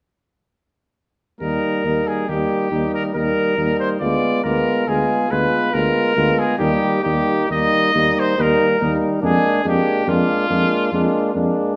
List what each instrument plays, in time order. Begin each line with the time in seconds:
1.40 tuba D#2, trombone G3, french horn A#3, flugelhorn D#4, trumpet A#4
1.84 tuba D#2, trombone G3, french horn A#3, flugelhorn D#4
2.07 trumpet G#4
2.28 tuba D#2, trombone G3, french horn A#3, flugelhorn D#4, trumpet G4
2.71 tuba D#2, trombone G3, french horn A#3, flugelhorn D#4
2.94 trumpet A#4
3.14 tuba D#2, trombone G3, french horn A#3, flugelhorn D#4, trumpet A#4
3.56 tuba D#2, trombone G3, french horn A#3, flugelhorn D#4
3.79 trumpet C5
4.00 tuba D2, trombone G#3, french horn B3, flugelhorn F4, trumpet D5
4.44 tuba D2, trombone G#3, french horn B3, flugelhorn F4, trumpet A#4
4.87 tuba D2, trombone G#3, french horn B3, flugelhorn F4, trumpet G#4
5.30 tuba D2, trombone G#3, french horn B3, flugelhorn F4, trumpet B4
5.73 tuba D2, trombone G#3, french horn B3, flugelhorn F4, trumpet A#4
6.16 tuba D2, trombone G#3, french horn B3, flugelhorn F4
6.39 trumpet G#4
6.58 tuba D#2, trombone G3, french horn A#3, flugelhorn D#4, trumpet G4
7.03 tuba D#2, trombone G3, french horn A#3, flugelhorn D#4, trumpet G4
7.48 tuba D#2, trombone G3, french horn A#3, flugelhorn D#4, trumpet D#5
7.94 tuba D#2, trombone G3, french horn A#3, flugelhorn D#4
8.19 trumpet C5
8.37 tuba D#2, trombone G3, french horn A#3, flugelhorn D#4, trumpet A#4
8.79 tuba D#2, trombone G3, french horn A#3, flugelhorn D#4
9.21 tuba F2, trombone G#3, french horn A#3, flugelhorn D4
9.25 trumpet G#4
9.63 tuba F2, trombone G#3, french horn A#3, flugelhorn D4
9.68 trumpet G4
10.06 tuba F2, trombone G#3, french horn A#3, flugelhorn D4, trumpet F4
10.49 tuba F2, trombone G#3, french horn A#3, flugelhorn D4
10.92 tuba F2, trombone G#3, french horn A#3, flugelhorn D4
11.33 tuba F2, trombone G#3, french horn A#3, flugelhorn D4